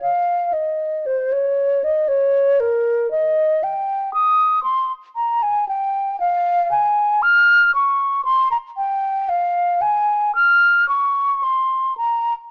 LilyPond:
\new Staff \with { instrumentName = "Flute" } { \time 3/4 \key ees \dorian \tempo 4 = 58 f''8 ees''8 c''16 des''8 ees''16 des''8 bes'8 | \key f \minor ees''8 g''8 ees'''8 c'''16 r16 bes''16 aes''16 g''8 | f''8 aes''8 f'''8 des'''8 c'''16 bes''16 g''8 | f''8 aes''8 f'''8 des'''8 c'''8 bes''16 r16 | }